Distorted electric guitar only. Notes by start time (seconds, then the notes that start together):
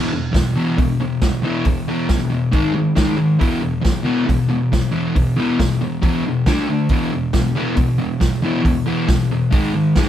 Already playing: E2 B2 E3
0.12 E2 B2
0.32 E2 B2
0.56 E2 B2 E3
0.78 E2 B2
1.00 E2 B2
1.22 E2 B2
1.43 E2 B2 E3
1.66 E2 B2
1.88 E2 B2 E3
2.09 E2 B2
2.30 E2 B2
2.52 G#2 D#3 G#3
2.75 G#2 D#3
2.96 G#2 D#3 G#3
3.17 G#2 D#3
3.39 E2 B2 E3
3.61 E2 B2
3.81 E2 B2
4.03 E2 B2 E3
4.26 E2 B2
4.48 E2 B2
4.72 E2 B2
4.92 E2 B2 E3
5.15 E2 B2
5.36 E2 B2 E3
5.60 E2 B2
5.81 E2 B2
6.02 E2 B2 E3
6.25 E2 B2
6.46 D3 A3 D4
6.68 D3 A3
6.90 E2 B2 E3
7.13 E2 B2
7.33 E2 B2
7.55 E2 B2 E3
7.76 E2 B2
7.98 E2 B2
8.20 E2 B2
8.42 E2 B2 E3
8.62 E2 B2
8.86 E2 B2 E3
9.08 E2 B2
9.31 E2 B2
9.51 G#2 D#3 G#3
9.74 G#2 D#3
9.97 G#2 D#3 G#3